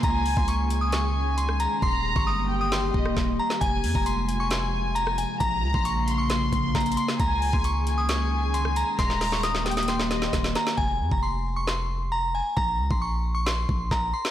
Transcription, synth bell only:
\new Staff \with { instrumentName = "Synth bell" } { \time 4/4 \key f \minor \tempo 4 = 134 bes''8. c'''16 des'''8. ees'''16 des'''4 c'''8 bes''8 | c'''8. des'''16 ees'''8. ees'''16 c'''4. bes''8 | aes''8. bes''16 c'''8. des'''16 c'''4 bes''8 aes''8 | bes''8. c'''16 des'''8. des'''16 c'''4 bes''8 c'''8 |
bes''8. c'''16 des'''8. ees'''16 des'''4 c'''8 bes''8 | c'''8. des'''16 ees'''8. ees'''16 c'''4. bes''8 | aes''8. bes''16 c'''8. des'''16 c'''4 bes''8 aes''8 | bes''8. c'''16 des'''8. des'''16 c'''4 bes''8 c'''8 | }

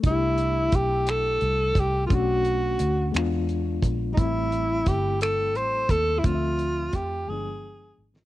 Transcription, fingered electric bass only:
\new Staff \with { instrumentName = "Fingered electric bass" } { \clef bass \time 6/8 \key c \major \tempo 4. = 58 c,4 b,,4 c,8 c,8 | b,,4 d,8 e,4 bes,,8 | a,,4 g,,4 a,,8 ees,8 | d,4 f,8 g,,4 aes,,8 | }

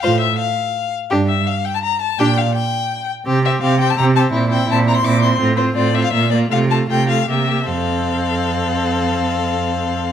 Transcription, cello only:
\new Staff \with { instrumentName = "Cello" } { \clef bass \time 3/4 \key f \major \tempo 4 = 166 a,4 r2 | g,4 r2 | bes,4 r2 | c4 c4 c4 |
bes,4 bes,4 bes,4 | a,4 a,4 bes,4 | c4 c4 c4 | f,2.~ |
f,2. | }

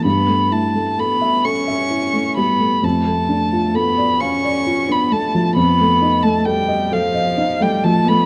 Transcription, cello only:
\new Staff \with { instrumentName = "Cello" } { \time 6/8 \key d \lydian \tempo 4. = 43 b8 a8 b8 cis'4 b8 | a4 b8 cis'8. b16 a8 | b8. a16 g8 f8. g16 a16 b16 | }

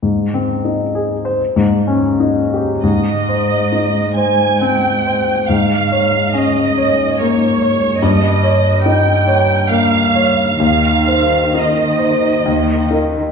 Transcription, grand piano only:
\new Staff \with { instrumentName = "Grand piano" } { \time 3/4 \key aes \major \tempo 4 = 67 \tuplet 3/2 { aes,8 c'8 ees'8 aes'8 c''16 r16 aes,8 des'8 ees'8 g'8 } | aes,8 c''8 ees'8 c''8 c'8 c''8 | aes,8 des''8 des'8 des''8 bes8 des''8 | g,8 des''8 ees'8 des''8 bes8 des''8 |
ees,8 c''8 ees'8 c''8 ees,8 <ees' bes'>8 | }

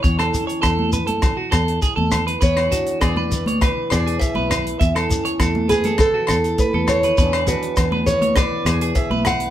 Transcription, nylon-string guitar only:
\new Staff \with { instrumentName = "Nylon-string guitar" } { \clef bass \time 4/4 \key e \mixolydian \tempo 4 = 101 << { r8 cis'2.~ cis'8 | r8 d'8 b2. | r8 cis'8 a2. | <e d' gis'>8 d'8 b2. | } \\ { e,2~ e,8 e,4. | e,4. e4 b,4. | e,4. e4 e,4. | e,4. e4 b,4. | } >> }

